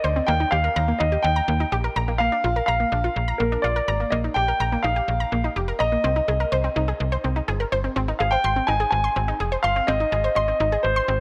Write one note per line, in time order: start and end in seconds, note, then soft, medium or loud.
0.00 0.15 C5 medium
0.00 0.29 D#5 medium
0.04 0.21 D2 medium
0.16 0.27 C4 medium
0.27 0.45 D#2 loud
0.27 0.39 A#3 loud
0.27 0.52 G5 loud
0.40 0.51 D#4 medium
0.51 0.69 D#2 loud
0.51 0.63 G4 medium
0.51 1.01 F5 loud
0.64 0.75 A#4 medium
0.76 0.93 D#2 loud
0.76 0.87 A#5 medium
0.88 0.99 A#3 medium
0.98 1.17 D#2 loud
0.98 1.11 D#4 medium
0.98 1.24 D#5 medium
1.12 1.23 G4 medium
1.23 1.41 D#2 loud
1.23 2.15 G5 loud
1.36 1.47 A#5 medium
1.48 1.65 D#2 loud
1.48 1.59 A#3 medium
1.60 1.71 D#4 medium
1.72 1.89 A#1 loud
1.72 1.83 G4 medium
1.84 1.95 A#4 medium
1.96 2.30 A#1 loud
1.96 2.07 A#5 medium
2.08 2.19 A#3 medium
2.18 2.31 A#3 medium
2.18 2.64 F5 loud
2.32 2.43 D4 medium
2.44 2.61 A#1 loud
2.44 2.55 F4 medium
2.56 2.67 A#4 medium
2.66 2.85 A#1 medium
2.66 3.41 F5 loud
2.66 2.79 A#5 medium
2.80 2.91 A#3 medium
2.92 3.09 A#1 loud
2.92 3.03 D4 medium
3.04 3.15 F4 medium
3.16 3.33 A#1 loud
3.28 3.39 A#5 medium
3.38 3.57 A#1 loud
3.38 3.51 A#3 medium
3.38 3.64 A#4 medium
3.52 3.63 D4 medium
3.62 3.81 A#1 medium
3.62 3.75 F4 medium
3.62 4.13 D5 medium
3.76 3.87 A#4 medium
3.88 4.05 G#1 loud
3.88 3.99 A#5 medium
4.00 4.11 A#3 medium
4.10 4.29 A#1 loud
4.10 4.23 A#3 loud
4.10 4.16 D#5 medium
4.24 4.35 D#4 medium
4.34 4.53 A#1 loud
4.34 4.47 G4 medium
4.34 4.85 G5 loud
4.48 4.59 A#4 medium
4.60 4.77 A#1 loud
4.60 4.71 A#5 medium
4.72 4.83 A#3 medium
4.83 5.01 A#1 loud
4.83 4.95 D#4 medium
4.83 5.51 F5 loud
4.96 5.07 G4 medium
5.08 5.25 A#1 loud
5.20 5.31 A#5 medium
5.32 5.49 A#1 loud
5.32 5.43 A#3 medium
5.44 5.55 D#4 medium
5.56 5.73 F1 loud
5.56 5.67 G4 medium
5.68 5.79 A#4 medium
5.79 5.97 A#1 loud
5.79 7.43 D#5 loud
5.79 5.91 A#5 medium
5.92 6.03 A#3 medium
6.04 6.21 C2 loud
6.04 6.15 C4 medium
6.16 6.27 D#4 medium
6.28 6.45 C2 loud
6.28 6.39 G#4 medium
6.40 6.51 A#4 medium
6.52 6.69 C2 medium
6.52 6.63 C5 medium
6.64 6.75 C4 medium
6.76 6.93 C2 loud
6.76 6.87 D#4 medium
6.88 6.99 G#4 medium
7.00 7.17 C2 loud
7.12 7.23 C5 medium
7.24 7.41 C2 medium
7.24 7.35 C4 medium
7.36 7.47 D#4 medium
7.48 7.65 G1 loud
7.48 7.59 G#4 medium
7.60 7.71 A#4 medium
7.72 7.89 G1 medium
7.72 7.83 C5 medium
7.84 7.95 C4 medium
7.96 8.13 G#1 loud
7.96 8.07 C4 medium
8.08 8.19 D#4 medium
8.19 8.37 G#1 loud
8.19 8.31 G#4 medium
8.19 8.32 F5 medium
8.31 8.43 C5 medium
8.31 8.68 G5 loud
8.44 8.61 G#1 loud
8.44 8.55 C6 medium
8.56 8.67 C4 medium
8.67 8.85 G#1 loud
8.67 8.79 D#4 medium
8.67 8.89 G#5 loud
8.80 8.91 G#4 medium
8.91 9.09 G#1 loud
8.91 9.36 G#5 medium
9.04 9.15 C6 medium
9.16 9.33 G#1 loud
9.16 9.27 C4 medium
9.28 9.39 D#4 medium
9.40 9.57 F1 medium
9.40 9.51 G#4 medium
9.52 9.63 C5 medium
9.63 9.81 G1 medium
9.63 9.86 F5 loud
9.63 9.75 C6 medium
9.76 9.87 C4 medium
9.87 10.05 G#1 loud
9.87 9.99 C4 loud
9.87 10.34 D#5 loud
10.00 10.11 D#4 medium
10.12 10.29 G#1 loud
10.12 10.23 G#4 medium
10.24 10.35 C5 medium
10.35 10.53 G#1 medium
10.35 10.80 D#5 medium
10.35 10.47 C6 medium
10.48 10.59 C4 medium
10.60 10.77 G#1 loud
10.60 10.71 D#4 medium
10.72 10.83 G#4 medium
10.83 11.01 G#1 loud
10.83 11.20 C5 medium
10.96 11.07 C6 medium
11.08 11.20 G#1 loud
11.08 11.19 C4 medium